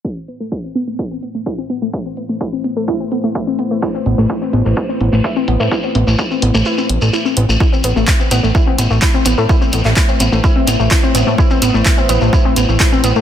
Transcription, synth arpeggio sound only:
X:1
M:4/4
L:1/16
Q:1/4=127
K:Am
V:1 name="Synth arpeggio sound"
E C B, A, E C B, A, E C B, A, E C B, A, | E C B, A, E C B, A, E C B, A, E C B, A, | E C B, A, E C B, A, E C B, A, E C B, A, | E C B, A, E C B, A, E C B, A, E C B, A, |
E C B, A, E C B, A, E C B, A, E C B, A, | E C B, A, E C B, A, E C B, A, E C B, A, | E C B, A, E C B, A, E C B, A, E C B, A, |]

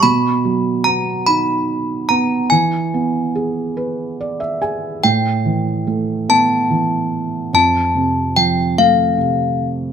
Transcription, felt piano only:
X:1
M:6/8
L:1/16
Q:3/8=48
K:Am
V:1 name="Felt piano"
z12 | z8 d e ^g2 | z12 | z12 |]
V:2 name="Felt piano" clef=bass
B,,2 ^F,2 B,2 ^D4 B,2 | E,2 B,2 ^G2 B4 G2 | A,,2 E,2 A,2 B,2 E,4 | F,,2 C,2 F,2 A,2 C,4 |]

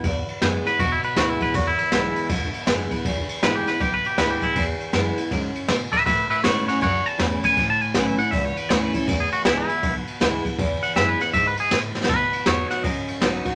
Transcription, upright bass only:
X:1
M:4/4
L:1/8
Q:"Swing" 1/4=159
K:E
V:1 name="Upright bass" clef=bass
E,, z F,, z E,, z =D,, z | E,, z B,,, z E,,, z F,,, z | E,,, z G,,, z B,,, z =D,, z | E,, z F,, z G,, z B,, z |
A,, z G,, z F,, z E,, z | A,,, z B,,, z C,, z =D,, z | E,, z C,, z B,,, z =D,, z | E,, z F,, z G,, z A,, z |
B,, z E,, z3 B,,, z |]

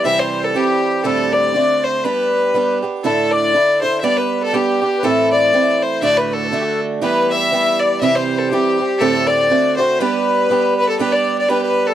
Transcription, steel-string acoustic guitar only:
X:1
M:2/4
L:1/8
Q:"Swing" 1/4=120
K:G
V:1 name="Steel-string acoustic guitar"
[C,E,G,CG]2 [E,G,CG]2 | [D,,A,,D,G,CG]2 [D,A,CF]2 | [G,B,DG]2 [G,B,DG] [B,DG] | [D,,A,,D,DEA]2 [D,DEA] [D,DEA] |
[G,B,DG]2 [G,B,DG] [B,DG] | [A,,E,A,CE]2 [E,A,CE]2 | [D,,A,,D,A,DF]2 [D,A,DF]2 | [E,G,B,G]2 [E,G,B,G]2 |
[C,E,G,CG]2 [E,G,CG] [G,CG] | [D,,A,,D,A,CG]2 [D,A,CF] [D,A,CF] | [G,B,DG]2 [G,B,DG]2 | [G,B,DG]2 [G,B,DG]2 |]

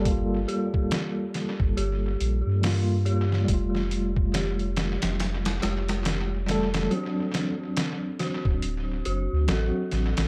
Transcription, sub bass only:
X:1
M:4/4
L:1/16
Q:"Swing 16ths" 1/4=70
K:Gm
V:1 name="Sub bass" clef=bass
G,,,2 z4 z G,,, G,,,2 B,,, G,,4- G,, | F,,,6- F,,, F,,,3 F,,,6 | z6 z D,,, D,,,2 ^F,,, D,, A,,, z A,,, A,,, |]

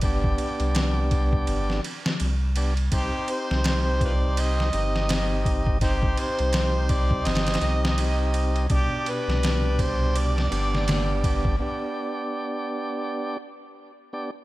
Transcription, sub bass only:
X:1
M:4/4
L:1/16
Q:"Swing 16ths" 1/4=83
K:Cm
V:1 name="Sub bass" clef=bass
G,,,2 z C,,4- C,, G,,,2 z2 C,,4 | C,, z2 C,,6- C,, G,,,6- | G,,,2 z C,,4- C,, G,,,2 C,,6 | C,, z2 C,,6- C,, G,,,6 |
z16 |]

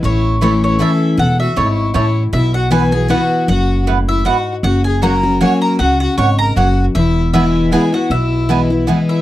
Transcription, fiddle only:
X:1
M:3/4
L:1/16
Q:"Swing" 1/4=156
K:Alyd
V:1 name="Fiddle"
E4 E2 E2 A4 | A2 F2 E4 E3 z | E2 F2 B2 G2 F4 | F4 z2 E2 F3 z |
F2 G2 ^A4 c2 A2 | F2 F2 c2 ^A2 F3 z | E4 E4 G2 F2 | E8 z2 E2 |]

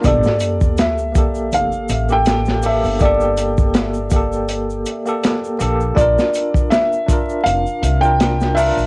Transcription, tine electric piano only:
X:1
M:4/4
L:1/16
Q:"Swing 16ths" 1/4=81
K:Gdor
V:1 name="Tine electric piano"
[B,GA]6 [B,GA]4- [B,GA] [B,GA]3 [B,GA]2 | [B,GA]6 [B,GA]4- [B,GA] [B,GA]3 [B,GA]2 | [DFB]6 [DFB]4- [DFB] [DFB]3 [DFB]2 |]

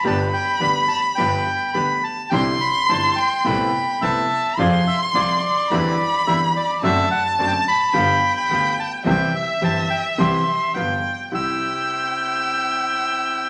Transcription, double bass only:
X:1
M:4/4
L:1/8
Q:1/4=107
K:C
V:1 name="Double bass" clef=bass
G,,, z D,, z G,,, z D,, z | C,, z G,,, z C,, z C,, z | F,, z C,, z E,, z E,, z | ^F,,, z F,,, z G,,, z D,, z |
C,, z G,,, z C,, z G,,, z | C,, z6 z |]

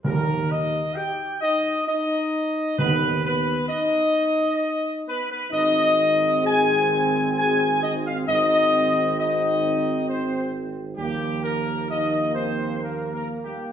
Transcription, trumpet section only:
X:1
M:3/4
L:1/16
Q:1/4=66
K:Ab
V:1 name="Trumpet section"
B2 e2 g2 e2 e4 | =B2 B2 ^d6 B B | e4 a4 a2 e f | e4 e4 c2 z2 |
G2 B2 e2 c2 (3B2 B2 G2 |]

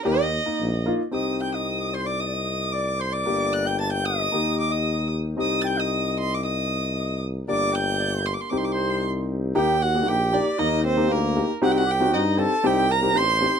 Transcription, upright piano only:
X:1
M:2/4
L:1/16
Q:1/4=115
K:none
V:1 name="Upright piano"
[_B,_EG]2 z [B,E_B] z2 [B,EF] z | [C_EG]8- | [C_EG]8 | [_B,DG]8 |
[_B,_EG]8 | [C_EG]8- | [C_EG]8 | [_B,DG]8 |
[C_EG]8 | [_B,_EG]2 z [B,EG] z2 [B,EG] z | [_B,_E_B]2 z [B,EG] z2 [B,EG] z | [C_EG]2 z [CE^F] z2 [CEG] z |
[C_EG]2 z [CEG] z2 [CEG] z |]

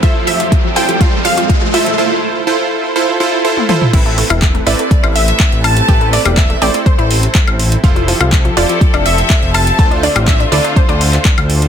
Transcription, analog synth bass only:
X:1
M:4/4
L:1/16
Q:1/4=123
K:Am
V:1 name="Analog synth bass" clef=bass
z16 | z16 | A,,,2 z E,,,2 z A,,, z2 A,,,2 z2 A,,,2 z | A,,,2 z E,,,2 z A,,, z2 A,,,2 z2 A,,,2 z |
F,,,2 z C,,2 z F,,, z2 F,,,2 z2 F,,,2 z | D,,2 z A,,,2 z D,, z2 D,,2 z2 D,,2 z |]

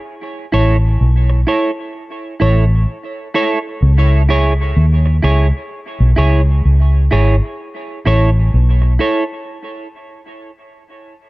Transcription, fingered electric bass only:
X:1
M:4/4
L:1/16
Q:"Swing 16ths" 1/4=64
K:Alyd
V:1 name="Fingered electric bass" clef=bass
z2 A,,,2 B,,,2 z4 A,,,2 z4 | C,,4 D,,2 C,, z2 B,,, C,,2 C,,2 G,,, z | z2 A,,,2 B,,,2 z8 z2 |]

